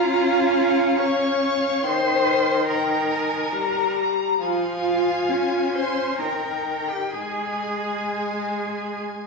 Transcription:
Already playing: viola C#4, cello F4, violin F5 A#5
0.99 cello C#5, violin F5 C#6
1.41 violin F5
1.83 viola D#3, cello C5, violin G5 C6
2.67 cello A#4, violin G5 A#5
3.10 violin G#5
3.52 viola G3, violin A#5
3.95 violin A#5
4.39 viola F3, cello F4, violin F5 G#5
5.29 viola C#4
5.74 cello C5, violin C6
6.19 viola D#3, cello A#4, violin G5 A#5
6.89 cello G4, violin G5
7.12 viola G#3, cello G#4, violin G#5

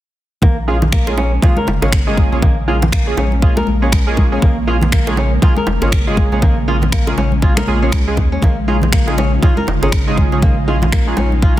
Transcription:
0.42 analog synth bass A#1, ambient pad C#3 G#3 A#3, nylon-string guitar A#3, kick, low bongo, low conga
0.68 synth keys G#3 A#3 C#4 F4 G#4, nylon-string guitar F4
0.82 low bongo, low conga
0.92 nylon-string guitar A#3, finger snap, kick
1.07 synth keys G#3 A#3 C#4 F4 G#4, high bongo
1.18 nylon-string guitar C#4, low bongo
1.42 synth keys G#3 A#3 C#4 F4 G#4, nylon-string guitar F4, kick, low bongo, low conga
1.57 nylon-string guitar A#4, high conga
1.67 analog synth bass F1, low bongo, high conga
1.82 analog synth bass G#1, synth keys G#3 A#3 C#4 F4 G#4, nylon-string guitar C#4, high bongo
1.92 finger snap, kick
2.07 synth keys G#3 A#3 C#4 F4 G#4, nylon-string guitar G#3
2.17 kick, high conga
2.32 analog synth bass A#1, synth keys G#3 A#3 C#4 F4 G#4, nylon-string guitar C#4, high conga
2.42 nylon-string guitar A#3, kick, low bongo, low conga
2.68 synth keys G#3 A#3 C#4 F4 G#4, nylon-string guitar F4
2.82 low bongo, low conga
2.92 nylon-string guitar A#3, finger snap, kick
3.07 synth keys G#3 A#3 C#4 F4 G#4
3.17 analog synth bass A#1, nylon-string guitar C#4, low bongo, high conga
3.32 high conga
3.42 synth keys G#3 A#3 C#4 F4 G#4, nylon-string guitar F4, kick
3.57 nylon-string guitar A#4, high bongo, high conga
3.67 analog synth bass A#1, high conga
3.82 synth keys G#3 A#3 C#4 F4 G#4, nylon-string guitar C#4
3.92 finger snap, kick, high conga
4.07 synth keys G#3 A#3 C#4 F4 G#4, nylon-string guitar G#3
4.17 kick, low bongo, high conga
4.32 synth keys G#3 A#3 C#4 F4 G#4, nylon-string guitar C#4
4.42 analog synth bass A#1, nylon-string guitar A#3, kick, low bongo, low conga
4.67 synth keys G#3 A#3 C#4 F4 G#4, nylon-string guitar F4
4.81 low bongo, low conga
4.92 nylon-string guitar A#3, finger snap, kick
5.07 synth keys G#3 A#3 C#4 F4 G#4, high bongo
5.17 nylon-string guitar C#4, low bongo
5.42 synth keys G#3 A#3 C#4 F4 G#4, nylon-string guitar F4, kick, low bongo, low conga
5.57 nylon-string guitar A#4, high conga
5.67 analog synth bass F1, low bongo, high conga
5.82 analog synth bass G#1, synth keys G#3 A#3 C#4 F4 G#4, nylon-string guitar C#4, high bongo
5.92 finger snap, kick
6.07 synth keys G#3 A#3 C#4 F4 G#4, nylon-string guitar G#3
6.17 kick, high conga
6.32 analog synth bass A#1, synth keys G#3 A#3 C#4 F4 G#4, nylon-string guitar C#4, high conga
6.42 nylon-string guitar A#3, kick, low bongo, low conga
6.68 synth keys G#3 A#3 C#4 F4 G#4, nylon-string guitar F4
6.82 low bongo, low conga
6.92 nylon-string guitar A#3, finger snap, kick
7.07 synth keys G#3 A#3 C#4 F4 G#4, high bongo
7.17 analog synth bass A#1, nylon-string guitar C#4, low bongo, high conga
7.32 high conga
7.42 synth keys G#3 A#3 C#4 F4 G#4, nylon-string guitar F4, kick
7.57 nylon-string guitar A#4, finger snap, high bongo, high conga
7.67 analog synth bass A#1, synth keys G#3 A#3 C#4 F4 G#4, high conga
7.82 synth keys G#3 A#3 C#4 F4 G#4, nylon-string guitar C#4
7.92 analog synth bass C#2, finger snap, kick, high conga
8.07 nylon-string guitar G#3, synth keys G#3 A#3 C#4 F4 G#4
8.17 analog synth bass D#2, kick, low bongo, high conga
8.32 nylon-string guitar C#4
8.42 analog synth bass A#1, nylon-string guitar A#3, ambient pad D#4 F4, kick, low bongo, low conga
8.68 synth keys G#3 C#4 D#4 F4 G#4, nylon-string guitar F4
8.82 low bongo, low conga
8.93 nylon-string guitar A#3, finger snap, kick
9.07 synth keys G#3 C#4 D#4 F4 G#4, high bongo
9.18 nylon-string guitar C#4, low bongo
9.43 synth keys G#3 C#4 D#4 F4 G#4, nylon-string guitar F4, kick, low bongo, low conga
9.57 nylon-string guitar A#4, high conga
9.67 analog synth bass F1, low bongo, high conga
9.82 analog synth bass G#1, synth keys G#3 C#4 D#4 F4 G#4, nylon-string guitar C#4, high bongo
9.92 finger snap, kick
10.07 synth keys G#3 C#4 D#4 F4 G#4, nylon-string guitar G#3
10.18 kick, high conga
10.32 analog synth bass A#1, synth keys G#3 C#4 D#4 F4 G#4, nylon-string guitar C#4, high conga
10.42 nylon-string guitar A#3, kick, low bongo, low conga
10.68 synth keys G#3 C#4 D#4 F4 G#4, nylon-string guitar F4
10.82 low bongo, low conga
10.92 nylon-string guitar A#3, finger snap, kick
11.07 synth keys G#3 C#4 D#4 F4 G#4
11.17 analog synth bass A#1, nylon-string guitar C#4, low bongo, high conga
11.32 high conga
11.42 synth keys G#3 C#4 D#4 F4 G#4, nylon-string guitar F4, kick

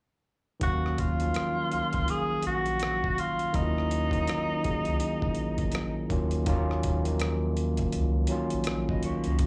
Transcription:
0.60 analog synth bass D#2, tine electric piano D#3 F#3 A#3 C#4 F5, tenor saxophone F#4, kick, closed hi-hat
0.86 cross-stick
0.98 tenor saxophone F4, kick, closed hi-hat
1.18 tine electric piano D#3 F3 A#3 C#4 F4, closed hi-hat
1.26 tine electric piano F#3
1.34 cross-stick, closed hi-hat
1.70 analog synth bass C#2, tine electric piano D#3 F#3 A#3 C#4 F5, closed hi-hat
1.93 analog synth bass C#2, kick, closed hi-hat
2.08 tenor saxophone G#4, closed hi-hat
2.32 analog synth bass A#1
2.42 tenor saxophone F#4, closed hi-hat
2.47 analog synth bass A#1
2.66 closed hi-hat
2.79 cross-stick, closed hi-hat
3.04 kick
3.18 tenor saxophone F4, closed hi-hat
3.39 closed hi-hat
3.53 analog synth bass D#2, tine electric piano D#3 F#3 A#3 C#4 E4, tenor saxophone D#4, kick, closed hi-hat
3.63 tine electric piano F4
3.78 cross-stick
3.91 closed hi-hat
4.11 tine electric piano D#3 F#3 A#3 C#4, kick, closed hi-hat
4.15 tine electric piano F4
4.27 cross-stick, closed hi-hat
4.63 analog synth bass C#2, tine electric piano D#3 F#3 A#3 C#4 G#4, kick, closed hi-hat
4.85 analog synth bass C#2, closed hi-hat
5.00 closed hi-hat
5.22 analog synth bass A#1, kick
5.35 closed hi-hat
5.39 analog synth bass A#1
5.58 kick, closed hi-hat
5.72 cross-stick, closed hi-hat
6.09 analog synth bass D#2, tine electric piano D#3 F#3 A#3 C#4 F4, kick, closed hi-hat
6.31 closed hi-hat
6.46 analog synth bass D#2, tine electric piano D#3 F#3 A#3 C#4 F4, kick, closed hi-hat
6.71 cross-stick
6.83 kick, closed hi-hat
7.04 tine electric piano D#3 F3 A#3 C#4 D#4, closed hi-hat
7.12 tine electric piano F#3
7.19 cross-stick, closed hi-hat
7.57 closed hi-hat
7.77 kick, closed hi-hat
7.92 analog synth bass C#2, closed hi-hat
8.27 tine electric piano D#3 F#3 A#3 C#4, closed hi-hat
8.32 tine electric piano F4
8.50 analog synth bass A#1, closed hi-hat
8.64 cross-stick, closed hi-hat
8.89 clean electric guitar F#4 D#5, kick
9.03 analog synth bass C#2, clean electric guitar F4 C#5, closed hi-hat
9.24 analog synth bass C#2, clean electric guitar C#4 A#4, closed hi-hat
9.39 analog synth bass D#2, kick, closed hi-hat

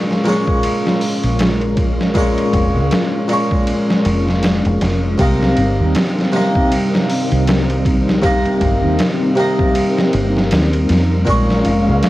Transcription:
Already playing: harpsichord A#2 G#3 C#5, string machine G#3 C#4 F4 A#4
0.11 snare
0.24 harpsichord A#2 G#3, snare, ride
0.28 harpsichord C#5
0.47 kick
0.63 ride
0.87 snare
1.01 open hi-hat
1.24 fingered electric bass A#1, ride
1.39 snare, ride
1.61 ride
1.77 kick, ride
2.01 snare
2.14 harpsichord A#2 G#3, kick, ride
2.18 harpsichord C#5
2.38 ride
2.53 fingered electric bass F1, kick, ride
2.76 fingered electric bass C#2
2.91 snare, ride
3.28 harpsichord A#2 G#3, ride
3.33 harpsichord C#5
3.51 kick
3.67 ride
3.90 snare
4.05 fingered electric bass F1, ride
4.28 snare
4.43 snare, ride
4.65 fingered electric bass F1, ride
4.81 fingered electric bass F1, snare, ride
5.18 fingered electric bass C2, harpsichord C3 A#3, string machine G3 C4 D#4 A#4, kick, ride
5.22 harpsichord D#5
5.42 snare
5.57 fingered electric bass G1, ride
5.80 fingered electric bass D#2
5.95 snare, ride
6.19 snare
6.32 harpsichord C3 A#3, snare, ride
6.36 harpsichord D#5
6.55 kick
6.72 ride
6.95 snare
7.10 open hi-hat
7.32 fingered electric bass C2, ride
7.47 snare, ride
7.70 ride
7.85 kick, ride
8.09 snare
8.22 harpsichord C3 A#3 D#5, kick, ride
8.46 ride
8.61 fingered electric bass G1, kick, ride
8.84 fingered electric bass D#2
8.99 snare, ride
9.35 harpsichord C3 A#3, ride
9.40 harpsichord D#5
9.59 kick
9.75 ride
9.98 snare
10.13 fingered electric bass G1, ride
10.37 snare
10.51 fingered electric bass D#2, snare, ride
10.73 ride
10.89 fingered electric bass F2, snare, ride
11.25 fingered electric bass A#1, harpsichord A#2 G#3, string machine G#3 C#4 F4, synth texture F5, kick, ride
11.29 harpsichord C#5
11.50 snare
11.65 fingered electric bass F1, ride
11.88 fingered electric bass C#2
12.03 snare, ride

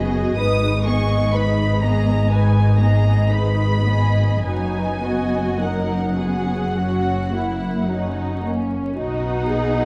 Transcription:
Already playing: double bass section F#1, cello section F#2, viola section B3 F#4, violin section G#4 D#5
0.38 double bass section G#1, cello section G#2, viola section G#3 D#4, violin section B4 D#6
0.86 viola section B3, violin section G#4 D#5 C#6
1.33 viola section G#3 D#4, violin section B4 B5
1.81 viola section B3, violin section G#4 D#5 A#5
2.30 viola section G#3 D#4, violin section B4 G#5
2.80 viola section B3, violin section G#4 D#5 A#5
3.32 viola section G#3 D#4, violin section B4 B5
3.86 viola section B3, violin section G#4 D#5
4.44 double bass section F#1, cello section F#2, viola section F#3 D#4, violin section D#4 B4 G#5
5.03 viola section B3 F#4, violin section F#4 D#5
5.61 viola section F#3 D#4, violin section A#4 F#5
6.19 viola section B3 F#4, violin section G#4
6.76 viola section F#3 C#4, violin section F#4
7.32 viola section A#3, violin section E4
7.87 viola section F#3 C#4, violin section D#4
8.44 viola section A#3, violin section C#4
8.97 double bass section B1, cello section B2, viola section B3 F#4, violin section D#4 F#5
9.49 viola section G#4

